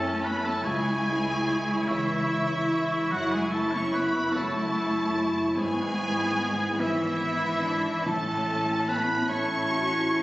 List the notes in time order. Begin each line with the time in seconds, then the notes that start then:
Already playing: F#2 A3 C#4 E4 A4 C#5 E5 A5
0.23 B3 B4 C#5 B5
0.42 A3 A4 A5
0.62 C#2 C#3 C#4 E4 G#4 G#5 C#6
0.66 G#3
1.06 G#3
1.47 C#5
1.87 E3 G#3 E4 G#4 C#5 E5
2.30 E5
2.71 C#5
3.11 F#1 F#2 F#3 E4 F#4 F#5
3.32 G#3 G#4 G#5
3.50 A3 A4 A5
3.54 F#3
3.71 C#4 C#5 C#6
3.93 B3 B4 C#5 B5
4.33 F#3 A3 E4 F#4 A4 C#5 A5
4.76 E5
5.17 C#5
5.56 G#1 G#2 G#3 B3 G#4 G#5
5.98 B3
6.39 B4
6.78 E3 B3 C#4 E4 B4 E5 B5
7.19 B3 E5
7.61 D4 B4
8.04 A1 A2 A3 C#4 E4 A4 A5
8.48 A3
8.88 B3 B4 C#5 B5
9.28 A3 C#4 E4 A4 C#5 C#6
9.70 F#4 E5
10.10 E4 C#5